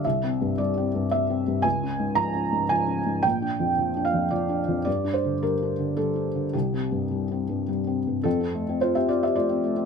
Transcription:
<<
  \new Staff \with { instrumentName = "Felt piano" } { \time 3/4 \key c \mixolydian \tempo 4 = 110 e''4 d''4 e''4 | aes''4 bes''4 aes''4 | g''4. f''8 d''8 r8 | d''8 c''8 bes'4 a'4 |
g'2 r4 | <c' a'>4 <f' c''>16 <g' e''>16 <f' d''>16 <g' e''>16 <f' d''>4 | }
  \new Staff \with { instrumentName = "Felt piano" } { \clef bass \time 3/4 \key c \mixolydian \tuplet 3/2 { c,8 c'8 g,8 g8 c'8 g,8 g8 c'8 g,8 } | \tuplet 3/2 { des,8 des'8 aes,8 f8 des'8 aes,8 f8 des'8 aes,8 } | \tuplet 3/2 { bes,,8 d'8 f,8 f8 d'8 f,8 f8 d'8 f,8 } | \tuplet 3/2 { g,8 d'8 d8 g8 d'8 d8 g8 d'8 d8 } |
\tuplet 3/2 { c,8 c'8 g,8 g8 c'8 g,8 g8 c'8 g,8 } | f,16 c'16 a16 c'8 c'8 c'16 a16 c'16 a16 c'16 | }
>>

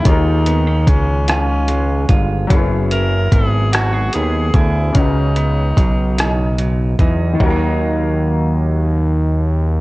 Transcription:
<<
  \new Staff \with { instrumentName = "Tenor saxophone" } { \time 6/8 \key ees \phrygian \tempo 4. = 49 ees'4 des'8 des'4 r8 | r8 bes'8 aes'8 ges'8 aes'8 fes'8 | ees'2 r4 | r2. | }
  \new Staff \with { instrumentName = "Grand piano" } { \time 6/8 \key ees \phrygian <ees bes f' aes' bes'>2. | <ges ces' des' fes' aes'>2. | <des des' ees' ges' ces''>2. | <ees ees' ges' bes' bes''>2. | }
  \new Staff \with { instrumentName = "Clean electric guitar" } { \time 6/8 \key ees \phrygian <ees aes des' f'>8 ces'16 des'16 aes8 f'8 aes8 f'8 | ges8 fes'8 ces'8 ges'16 aes'16 ces'8 aes'8 | des8 ces'8 ges8 ees'8 ges8 ees'8 | <ees ges bes ees'>2. | }
  \new Staff \with { instrumentName = "Analog synth bass" } { \clef bass \time 6/8 \key ees \phrygian ees,4 des,4. g,,8 | ges,,4 aes,,4 ees,8 d,8 | des,4 ces,4. fes,8 | ees,2. | }
  \new DrumStaff \with { instrumentName = "Drums" } \drummode { \time 6/8 <hh bd>8 hh8 <hh bd>8 <hh ss>8 hh8 <hh bd>8 | <hh bd>8 hh8 <hh bd>8 <hh ss>8 hh8 <hh bd>8 | <hh bd>8 hh8 <hh bd>8 <hh ss>8 hh8 <hh bd>8 | <bd tomfh>4. r4. | }
>>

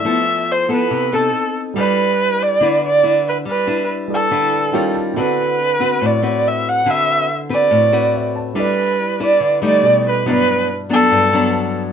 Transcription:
<<
  \new Staff \with { instrumentName = "Erhu" } { \time 4/4 \key g \major \tempo 4 = 141 e''4 c''8 b'4 a'4 r8 | b'4. d''4 d''4 b'8 | b'4 r8 a'2 r8 | b'2 d''8 d''8 e''8 fis''8 |
e''4 r8 d''2 r8 | b'4. d''4 d''4 b'8 | b'4 r8 a'2 r8 | }
  \new Staff \with { instrumentName = "Grand piano" } { \time 4/4 \key g \major << { r1 | r1 | r2. g''8 a''8 | r1 |
r2. e''8 a''8 | r1 | r2. a''4 | } \\ { r1 | <g e' a' b' d''>1~ | <g e' a' b' d''>4. <g e' a' b' d''>4. <ees f' g' bes' des''>4 | <d c' e' fis' a' b'>1~ |
<d c' e' fis' a' b'>1 | <g e' a' b' d''>2. <b, dis' g' a' d''>4 | <e' fis' b' d''>1 | } >> }
  \new Staff \with { instrumentName = "Nylon-string guitar" } { \time 4/4 \key g \major << { <b e' a'>4. <b e' a'>4 <c' ees' a'>4. | <d' e' b'>2 <d' e' b'>8 r8 <d' e' b'>4 | r8 <d' e' b'>4. <d' e' b'>4 <g des' f'>4 | <c' fis' b'>4 r8 <c' fis' b'>4 <c' fis' b'>4. |
<c' fis' b'>4 r8 <c' fis' b'>4 <c' fis' b'>4. | <d' e' b'>4 r8 <d' e' b'>4 <g a ees'>4. | <fis b d'>4 r8 <fis b d'>4 <fis b d'>4. | } \\ { f2 c4 r4 | g2 d2 | g2 d4 r4 | d2 a,2 |
d2 a,2 | g2 d4 r4 | g,2 g,2 | } >> }
>>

